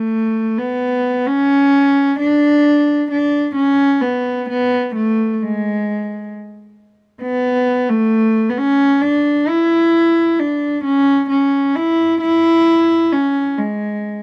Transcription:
0.00 0.60 A3 medium
0.58 1.28 B3 medium
1.27 2.18 C#4 medium
2.19 3.05 D4 medium
3.11 3.52 D4 medium
3.55 4.03 C#4 medium
4.01 4.46 B3 medium
4.49 4.90 B3 medium
4.95 5.33 A3 medium
5.33 5.44 A3 soft
5.42 6.30 G#3 medium
7.22 7.90 B3 medium
7.89 8.51 A3 medium
8.49 8.59 B3 medium
8.58 9.03 C#4 medium
9.01 9.50 D4 medium
9.48 10.41 E4 medium
10.39 10.83 D4 medium
10.84 11.25 C#4 medium
11.30 11.77 C#4 medium
11.76 12.19 E4 medium
12.21 13.14 E4 medium
13.12 13.60 C#4 medium
13.58 14.23 G#3 medium

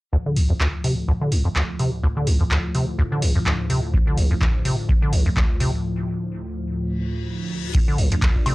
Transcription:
0.13 0.17 D2 loud
0.13 7.71 D2 medium
0.13 7.71 A2 medium
0.13 7.71 F3 medium
0.26 0.38 D3 medium
0.37 0.48 C2 loud
0.37 open hi-hat loud
0.50 0.53 F2 medium
0.60 0.68 D2 medium
0.60 clap loud
0.84 0.95 C3 medium
0.84 open hi-hat medium
1.08 1.12 D2 medium
1.21 1.33 D3 medium
1.32 1.43 C2 loud
1.32 open hi-hat loud
1.45 1.49 F2 medium
1.56 1.63 D2 medium
1.56 clap loud
1.79 1.90 C3 medium
1.79 open hi-hat medium
2.03 2.08 D2 medium
2.17 2.29 D3 medium
2.27 2.38 C2 loud
2.27 open hi-hat loud
2.40 2.44 F2 medium
2.51 2.58 D2 medium
2.51 clap loud
2.75 2.86 C3 medium
2.75 open hi-hat medium
2.99 3.03 D2 medium
3.12 3.24 D3 medium
3.22 3.33 C2 loud
3.22 open hi-hat loud
3.36 3.39 F2 medium
3.46 3.53 D2 medium
3.46 clap loud
3.70 3.81 C3 medium
3.70 open hi-hat medium
3.94 3.98 D2 loud
3.94 kick loud
4.07 4.19 D3 medium
4.17 4.28 C2 loud
4.17 open hi-hat loud
4.31 4.34 F2 medium
4.41 4.49 D2 medium
4.41 kick loud
4.41 clap loud
4.65 4.76 C3 medium
4.65 open hi-hat medium
4.89 4.93 D2 medium
4.89 kick loud
5.02 5.14 D3 medium
5.13 5.24 C2 medium
5.13 open hi-hat loud
5.26 5.29 F2 medium
5.36 5.44 D2 medium
5.36 kick loud
5.36 clap loud
5.60 5.71 C3 medium
5.60 open hi-hat medium
6.79 reverse cymbal medium
7.74 7.79 D2 loud
7.74 8.55 D2 medium
7.74 8.55 A2 medium
7.74 8.55 F3 medium
7.74 8.55 D4 medium
7.74 kick loud
7.74 closed hi-hat medium
7.74 crash medium
7.88 8.00 D3 medium
7.98 8.09 C2 loud
7.98 open hi-hat loud
8.12 8.15 F2 medium
8.12 8.55 A4 medium
8.12 closed hi-hat medium
8.22 8.30 D2 medium
8.22 kick loud
8.22 clap loud
8.22 closed hi-hat medium
8.36 8.55 F5 medium
8.36 kick medium
8.46 8.55 C3 medium
8.46 open hi-hat medium
8.46 high woodblock medium

